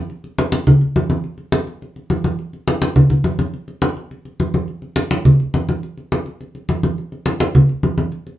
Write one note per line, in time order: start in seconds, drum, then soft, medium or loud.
0.10 high conga soft
0.24 high conga soft
0.38 high conga loud
0.52 high conga medium
0.67 high conga soft
0.67 low conga loud
0.81 high conga soft
0.96 high conga medium
1.10 high conga medium
1.24 high conga soft
1.38 high conga soft
1.52 high conga loud
1.67 high conga soft
1.82 high conga soft
1.96 high conga soft
2.10 high conga medium
2.24 high conga medium
2.39 high conga soft
2.53 high conga soft
2.68 high conga loud
2.82 high conga medium
2.96 high conga soft
2.96 low conga loud
3.10 high conga soft
3.10 low conga medium
3.24 high conga medium
3.39 high conga medium
3.54 high conga soft
3.68 high conga soft
3.82 high conga loud
3.97 high conga soft
4.11 high conga soft
4.25 high conga soft
4.40 high conga medium
4.54 high conga medium
4.68 high conga soft
4.82 high conga soft
4.96 high conga medium
5.11 high conga loud
5.25 high conga soft
5.25 low conga loud
5.40 high conga soft
5.54 high conga medium
5.69 high conga medium
5.83 high conga soft
5.98 high conga soft
6.12 high conga medium
6.26 high conga soft
6.41 high conga soft
6.55 high conga soft
6.69 high conga medium
6.83 high conga medium
6.98 high conga soft
7.12 high conga soft
7.26 high conga medium
7.40 high conga loud
7.55 high conga soft
7.55 low conga medium
7.69 high conga soft
7.83 high conga medium
7.98 high conga medium
8.12 high conga soft
8.27 high conga soft